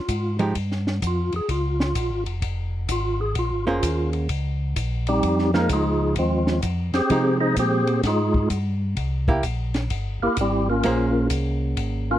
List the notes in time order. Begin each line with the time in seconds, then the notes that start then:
Already playing: F4
0.09 G#2, kick, hi-hat pedal, ride
0.39 F3 G#3 D#4 G4, ride
0.55 G2, kick, ride
0.72 snare
0.87 snare
1.02 F2, kick, hi-hat pedal, ride
1.07 F4
1.32 F2 G#4, ride
1.49 C#2 F4, kick, ride
1.80 F4, snare
1.95 A#1, kick, hi-hat pedal, ride
2.10 G#1
2.26 F1, ride
2.42 F1, kick, ride
2.89 G#1 F4, kick, hi-hat pedal, ride
3.21 G#4
3.35 A#1 F4, kick, ride
3.51 G#1
3.67 F1 A#3 C#4 F4 G#4 C5
3.83 D#2, kick, hi-hat pedal, ride
4.13 ride
4.29 C#2, kick, ride
4.76 A#1, kick, hi-hat pedal, ride
5.07 G3 C4 D#4 G4, ride
5.23 F2, kick, ride
5.39 snare
5.54 F3 G#3 A#3 D#4 A#4, snare
5.69 C#2 G#4, kick, hi-hat pedal, ride
5.73 G#3 D#4 F4
6.16 D#2 F3 G#3 C4 F4, kick, ride
6.47 snare
6.62 F2, kick, hi-hat pedal, ride
6.93 F2 C4 G4 G#4 C5, snare, ride
7.09 C3 F3 G#3 D#4 G4, kick, ride
7.40 D#4 G#4 C5 D#5
7.56 A#2 C4 G4 G#4 C5, kick, hi-hat pedal, ride
7.87 ride
8.03 G#2 D#4 G#4, kick, snare, ride
8.07 G#3 F4
8.34 kick
8.50 G2, kick, hi-hat pedal, ride
8.97 C2, kick, ride
9.28 A#3 E4 G4, kick
9.43 A#1, kick, hi-hat pedal, ride
9.74 snare, ride
9.90 G1, kick, ride
10.20 G1 A#3 E4 G4 A#4
10.37 G#1, kick, hi-hat pedal, ride
10.41 G3 C4 E4 G4
10.70 A#3 C#4 F4 A#4
10.83 A#1 A#3 C#4 G#4 C5, kick, ride
11.30 C2, kick, hi-hat pedal, ride
11.77 G#1, kick, ride
12.11 A#3 C#4 F4 A#4